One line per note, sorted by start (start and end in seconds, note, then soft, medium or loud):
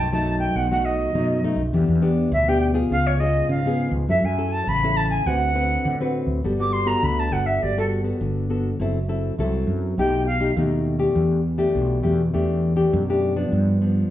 0.00 0.47 B1 loud
0.00 0.53 F#2 medium
0.00 0.11 A5 loud
0.13 0.66 F#3 medium
0.13 0.67 A3 medium
0.13 0.67 D#4 medium
0.13 0.38 A5 medium
0.39 0.58 G5 medium
0.55 1.05 B1 medium
0.55 1.12 B2 medium
0.55 0.71 F#5 loud
0.71 1.10 F#3 medium
0.71 1.11 A3 medium
0.71 1.11 D#4 medium
0.71 0.86 F#5 medium
0.85 1.44 D#5 medium
1.14 1.71 F#2 medium
1.14 1.52 B2 loud
1.14 1.39 F#3 medium
1.14 1.40 A3 medium
1.14 1.40 D#4 medium
1.44 1.61 F#3 medium
1.44 1.61 A3 medium
1.44 1.61 D#4 medium
1.56 1.70 B1 medium
1.73 1.86 E2 loud
1.73 2.30 E3 medium
1.73 1.98 B3 medium
1.73 1.98 D4 medium
1.73 1.99 G4 medium
1.88 2.26 E2 medium
2.02 2.30 B3 medium
2.02 2.30 D4 medium
2.02 2.30 G4 medium
2.32 2.82 D2 loud
2.32 2.88 B2 medium
2.32 2.50 E5 medium
2.48 2.72 B3 medium
2.48 2.72 D4 medium
2.48 2.73 G4 medium
2.48 2.60 G5 medium
2.61 2.67 G5 medium
2.74 3.15 B3 medium
2.74 3.15 F4 medium
2.74 3.15 G#4 medium
2.91 3.41 C#2 medium
2.91 3.47 C#3 medium
2.91 3.08 F5 loud
3.07 3.21 C#5 medium
3.20 3.60 B3 medium
3.20 3.60 F4 medium
3.20 3.60 G#4 medium
3.20 3.50 D#5 medium
3.49 4.06 G#2 medium
3.49 3.87 C#3 loud
3.49 3.91 F5 medium
3.66 4.05 B3 medium
3.66 4.05 F4 medium
3.66 4.05 G#4 medium
3.91 4.05 C#2 loud
4.08 4.21 F#2 medium
4.08 4.65 F#3 medium
4.08 4.26 C#4 medium
4.08 4.27 E4 medium
4.08 4.27 A4 medium
4.08 4.26 E5 medium
4.24 4.61 F#2 medium
4.24 4.53 G#5 medium
4.38 4.66 C#4 medium
4.38 4.66 E4 medium
4.38 4.66 A4 medium
4.52 4.70 A5 loud
4.67 5.17 A1 loud
4.67 5.24 C#3 medium
4.67 4.98 B5 loud
4.84 5.23 C#4 medium
4.84 5.23 E4 medium
4.84 5.23 A4 medium
4.97 5.09 A5 loud
5.10 5.28 G#5 loud
5.26 5.76 D2 medium
5.26 5.83 D3 medium
5.26 5.51 C4 medium
5.26 5.52 F#4 medium
5.26 5.52 B4 medium
5.26 6.15 F#5 loud
5.55 5.95 C4 medium
5.55 5.95 F#4 medium
5.55 5.95 B4 medium
5.85 6.41 A2 medium
5.85 6.23 D3 loud
6.00 6.40 C4 medium
6.00 6.40 F#4 medium
6.00 6.40 B4 medium
6.27 6.40 D2 medium
6.44 6.94 G1 medium
6.44 7.00 G3 medium
6.44 6.53 B3 soft
6.44 6.53 F#4 soft
6.44 6.54 A4 medium
6.59 6.84 B3 medium
6.59 6.84 F#4 medium
6.59 6.84 A4 medium
6.59 6.74 D6 medium
6.73 6.89 C6 loud
6.86 7.27 B3 medium
6.86 7.27 F#4 medium
6.86 7.27 A4 medium
6.86 7.05 A#5 medium
7.03 7.28 D2 medium
7.03 7.59 D3 medium
7.03 7.21 B5 loud
7.19 7.34 A5 medium
7.31 7.57 G1 medium
7.31 7.72 B3 medium
7.31 7.72 F#4 soft
7.31 7.72 A4 medium
7.31 7.48 F#5 medium
7.46 7.64 E5 medium
7.62 8.12 G1 medium
7.62 8.18 G3 medium
7.62 7.77 D5 medium
7.77 8.02 B3 medium
7.77 8.02 F#4 medium
7.77 8.02 A4 medium
7.77 7.87 A4 medium
8.04 8.45 B3 medium
8.04 8.45 F#4 medium
8.04 8.45 A4 medium
8.21 8.71 G1 loud
8.21 8.77 D3 medium
8.50 8.69 B3 medium
8.50 8.70 F#4 medium
8.50 8.70 A4 medium
8.80 9.30 F#1 loud
8.80 9.36 F#3 medium
8.80 8.98 C4 medium
8.80 8.98 E4 medium
8.80 8.98 A4 medium
9.08 9.34 C4 medium
9.08 9.34 E4 medium
9.08 9.34 A4 medium
9.39 9.64 C2 medium
9.39 9.95 F#3 medium
9.39 9.94 C4 medium
9.39 9.94 E4 medium
9.39 9.94 A4 medium
9.67 9.93 F#2 medium
9.98 10.48 B1 medium
9.98 10.54 B2 medium
9.98 10.26 A3 medium
9.98 10.26 D#4 medium
9.98 10.26 G4 medium
9.98 10.26 G5 medium
10.27 10.55 F5 loud
10.40 10.51 A3 medium
10.40 10.51 D#4 medium
10.40 10.52 G4 medium
10.57 11.07 D#2 loud
10.57 11.13 B2 medium
10.57 10.97 A3 medium
10.57 10.97 D#4 medium
10.57 10.97 G4 medium
10.99 11.40 A3 medium
10.99 11.40 D4 medium
10.99 11.40 G4 medium
11.15 11.66 E2 loud
11.15 11.72 E3 medium
11.58 11.99 A3 medium
11.58 11.99 D4 medium
11.58 11.99 G4 medium
11.75 12.00 B1 medium
11.75 12.31 B2 medium
12.03 12.29 E2 medium
12.03 12.21 A3 soft
12.03 12.21 D4 medium
12.03 12.21 G4 medium
12.34 12.85 E2 medium
12.34 12.90 E3 medium
12.34 12.73 A3 medium
12.34 12.74 D4 medium
12.34 12.74 G4 medium
12.76 13.02 A3 medium
12.76 13.02 D4 medium
12.76 13.03 G4 medium
12.93 13.44 F#2 loud
12.93 13.49 B2 medium
13.09 13.34 A3 medium
13.09 13.34 D4 medium
13.09 13.34 G4 medium
13.36 13.80 F3 medium
13.36 13.80 B3 medium
13.36 13.81 D4 medium
13.52 14.03 G2 medium
13.52 14.09 G2 medium
13.81 14.10 F3 soft
13.81 14.10 B3 medium
13.81 14.10 D4 medium